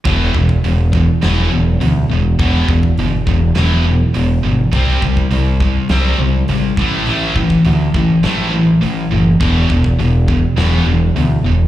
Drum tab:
HH |o---o---o---o---|o---o---o---o---|o---o---o---o---|o---o---o---o---|
SD |--------o-------|--------o-------|--------o-------|--------o-------|
BD |o-oo--o---------|o-oo--o---------|o-oo--o-------o-|--oo--o---------|

HH |o---o---o---o---|
SD |--------o-------|
BD |o-oo--o---------|